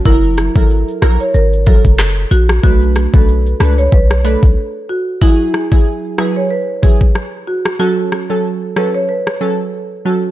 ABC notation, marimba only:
X:1
M:4/4
L:1/16
Q:"Swing 16ths" 1/4=93
K:F#m
V:1 name="Marimba"
E2 z A z2 ^A c A z =A z3 F z | F2 z A z2 B c B z A z3 F z | E2 z G z2 B c B z G z3 F z | F2 z A z2 B c B z A z3 F z |]